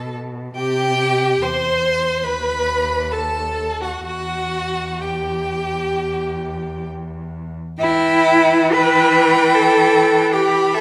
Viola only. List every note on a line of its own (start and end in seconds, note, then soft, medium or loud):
0.00 0.16 A4 medium
0.56 1.44 G4 medium
1.42 2.25 C5 medium
2.24 3.13 B4 medium
3.11 3.82 A4 medium
3.81 4.04 F#4 medium
4.04 5.01 F#4 medium
5.00 6.87 G4 soft
7.80 10.81 E3 medium